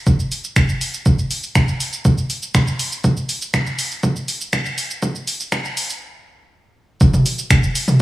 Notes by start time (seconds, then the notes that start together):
0.07 kick, shaker
0.19 shaker
0.32 open hi-hat, shaker
0.44 shaker
0.56 finger snap, kick, shaker
0.69 shaker
0.81 open hi-hat, shaker
0.94 shaker
1.06 kick, shaker
1.19 shaker
1.31 open hi-hat, shaker
1.43 shaker
1.55 finger snap, kick, shaker
1.68 shaker
1.80 open hi-hat, shaker
1.93 shaker
2.05 kick, shaker
2.18 shaker
2.30 open hi-hat, shaker
2.43 shaker
2.55 finger snap, kick, shaker
2.67 shaker
2.79 open hi-hat, shaker
2.92 shaker
3.04 kick, shaker
3.17 shaker
3.29 open hi-hat, shaker
3.42 shaker
3.54 finger snap, kick, shaker
3.66 shaker
3.79 open hi-hat, shaker
3.91 shaker
4.03 kick, shaker
4.16 shaker
4.28 open hi-hat, shaker
4.41 shaker
4.53 finger snap, kick, shaker
4.66 shaker
4.78 open hi-hat, shaker
4.90 shaker
5.03 kick, shaker
5.15 shaker
5.27 open hi-hat, shaker
5.40 shaker
5.52 finger snap, kick, shaker
5.65 shaker
5.77 open hi-hat, shaker
5.90 shaker
7.01 kick, shaker
7.14 mid tom, shaker
7.26 open hi-hat, shaker
7.38 shaker
7.51 finger snap, kick, mid tom, shaker
7.63 shaker
7.75 open hi-hat, shaker
7.88 mid tom, shaker